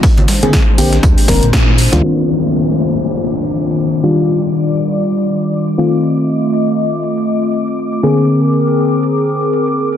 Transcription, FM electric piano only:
X:1
M:4/4
L:1/16
Q:"Swing 16ths" 1/4=120
K:Cm
V:1 name="FM electric piano"
z3 [D,B,CA] z2 [D,B,CG] z3 [D,B,CB] z4 [E,B,DF] | [E,B,CDF]16 | [E,G,DF]12- [E,G,DF]2 [E,=A,CF]2- | [E,=A,CF]16 |
[D,B,CA]16 |]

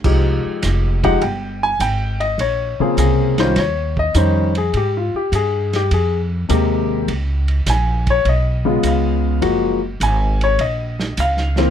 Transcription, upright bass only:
X:1
M:4/4
L:1/8
Q:"Swing" 1/4=102
K:Fm
V:1 name="Upright bass" clef=bass
C,, z F,,,2 G,,,2 A,,,2 | B,,, z C,,2 E,,2 F,,2 | A,, z G,,2 F,,2 E,,2 | D,,2 B,,,2 _C,,2 D,,2 |
_G,,,2 A,,,2 B,,,2 D,,2 |]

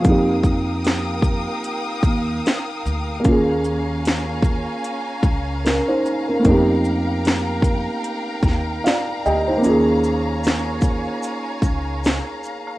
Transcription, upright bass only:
X:1
M:4/4
L:1/16
Q:"Swing 16ths" 1/4=75
K:Ebmix
V:1 name="Upright bass" clef=bass
F,,6- F,, z3 E,,2 z2 =D,,2 | E,,6- E,, z3 D,,3 z3 | F,,6- F,, z3 E,,2 z2 =D,,2 | E,,6- E,, z3 D,,3 z3 |]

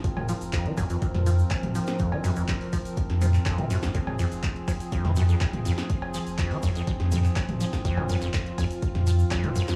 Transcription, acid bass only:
X:1
M:4/4
L:1/16
Q:1/4=123
K:Fm
V:1 name="Acid bass" clef=bass
z2 F, z F,, F, _G,, F,, F,, z F, z3 F, z | F,, F, _G,, F,, F,, z F, z3 F, z F,, F, G,, F,, | F,, z F,, z3 F, z F,, F, _G,, F,, F,, z F,, z | z2 F, z F,, F, _G,, F,, F,, z F,, z3 F, z |
F,, F, _G,, F,, F,, z F,, z3 F, z F,, F, G,, F,, |]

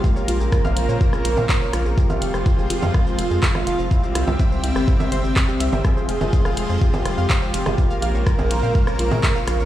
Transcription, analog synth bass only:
X:1
M:4/4
L:1/16
Q:1/4=124
K:Fm
V:1 name="Analog synth bass" clef=bass
z2 B,,, B,,, z B,,, B,,, B,, z2 B,,, B,, z2 B,,, B,,, | z2 F,,, F,,, z F,,, F,,, F,, z2 F,,, F,, z2 F,,, F,,, | z2 C,, C,, z C,, C,, G,,, z2 G,,, G,,, z2 C,, G,,, | z2 F,,, F,,, z F,,, F,,, F,, z2 F,,, F,, z2 F,,, F,,, |
z2 B,,, B,,, z B,,, B,,, B,, z2 B,,, B,, z2 B,,, B,,, |]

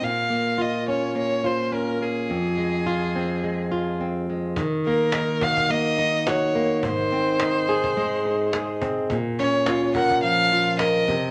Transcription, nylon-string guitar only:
X:1
M:4/4
L:1/8
Q:"Swing 16ths" 1/4=106
K:Bbm
V:1 name="Nylon-string guitar"
B,, B, F D B, F D B, | F,, A, F C A, F C A, | E, B, E G B, E G B, | A,, C E A A, E A C |
B,, D F B F, F B C, |]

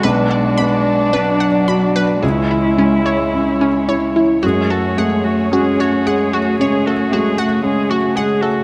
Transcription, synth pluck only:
X:1
M:4/4
L:1/16
Q:1/4=55
K:F#m
V:1 name="Synth pluck"
B d b z B f b B G E C c z C c E | F A f z F c f F c A F f z F f A |]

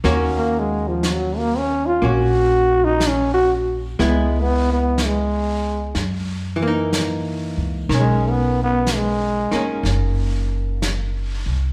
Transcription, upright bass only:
X:1
M:4/4
L:1/8
Q:"Swing" 1/4=61
K:Ebm
V:1 name="Upright bass" clef=bass
E,,4 B,,,4 | D,,4 G,,3 D,, | =B,,,3 z ^F,,,3 =C,, |]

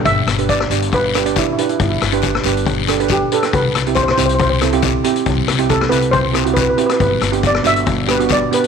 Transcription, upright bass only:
X:1
M:4/4
L:1/8
Q:1/4=138
K:G
V:1 name="Upright bass" clef=bass
G,,, G,,,2 G,,,4 z | G,,, G,,,2 G,,,4 z | C,, C,,2 C,,4 z | C,, C,,2 C,,4 z |
G,,, G,,,2 G,,,4 z |]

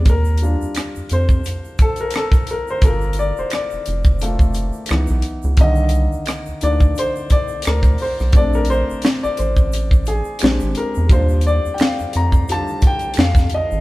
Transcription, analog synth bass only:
X:1
M:4/4
L:1/16
Q:"Swing 16ths" 1/4=87
K:Eblyd
V:1 name="Analog synth bass" clef=bass
E,,3 F,, z F,, F,,2 z8 | G,,,3 F,,, z F,,, F,,,4- F,,, z _D,, _C,, z D,, | C,,3 D,, z D,, D,,2 z4 D,,2 z _C,, | B,,,3 A,,, z A,,, A,,,4- A,,, z B,,, _A,,, z =E,, |
E,,3 F,, z F,, F,,2 z4 F,,2 z _A,,, |]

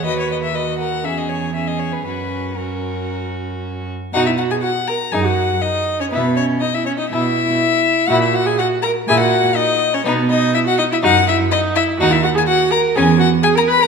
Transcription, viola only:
X:1
M:4/4
L:1/16
Q:1/4=122
K:B
V:1 name="Viola"
F4 F4 C4 C4 | C4 C8- C2 z2 | F E F G F2 A2 G F3 D3 C | B,2 C2 D E C D E8 |
F E F G F2 A2 G F3 D3 C | B,2 D2 E F D E F2 E2 D2 E2 | F E F G F2 A2 G2 F2 G A B A |]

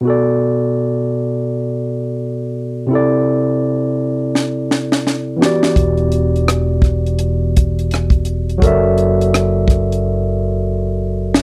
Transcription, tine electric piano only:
X:1
M:4/4
L:1/8
Q:"Swing 16ths" 1/4=84
K:Bphr
V:1 name="Tine electric piano"
[B,,B,FAd]8 | [C,CEAd]6- [C,CEAd] [E,B,FGd]- | [E,B,FGd]6- [E,B,FGd] z | [F,FA^Ade]8 |]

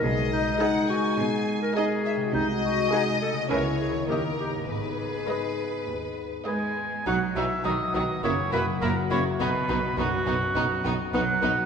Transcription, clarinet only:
X:1
M:4/4
L:1/16
Q:1/4=103
K:G#m
V:1 name="Clarinet"
G2 D4 F2 G3 A G4 | D2 F2 G2 =A2 ^A2 G2 =G2 G2 | G12 z4 | [K:B] z16 |
z16 |]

